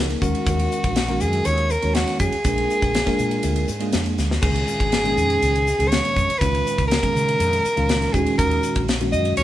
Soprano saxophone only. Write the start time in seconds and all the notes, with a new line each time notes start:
0.22 F#4
1.21 G#4
1.46 C#5
1.71 A#4
1.95 F#4
2.20 G#4
4.42 G#4
5.88 C#5
6.38 B4
6.87 A#4
8.13 G#4
8.38 A#4
9.12 D#5
9.37 C#5